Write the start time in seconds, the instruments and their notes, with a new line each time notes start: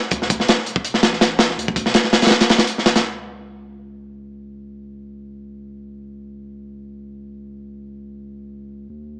0.11 sub bass D2, kick, closed hi-hat
0.22 snare
0.30 kick, closed hi-hat
0.40 sub bass D1, snare
0.48 snare, closed hi-hat
0.58 snare
0.66 closed hi-hat
0.76 kick
0.85 closed hi-hat
0.94 snare
1.03 sub bass A1, snare, closed hi-hat
1.13 snare
1.21 sub bass A1, snare, closed hi-hat
1.39 snare, closed hi-hat
1.50 snare
1.58 sub bass D2, closed hi-hat
1.68 kick
1.76 kick, closed hi-hat
1.86 sub bass D1, snare
1.94 snare, closed hi-hat
2.04 snare
2.13 snare, closed hi-hat
2.22 snare, closed hi-hat
2.27 snare, closed hi-hat
2.31 snare, closed hi-hat
2.41 snare, closed hi-hat
2.49 snare, closed hi-hat
2.58 snare, closed hi-hat
2.67 closed hi-hat
2.78 snare
2.86 sub bass A1, snare, closed hi-hat
2.96 snare, closed hi-hat
3.04 sub bass C#2
8.90 sub bass D2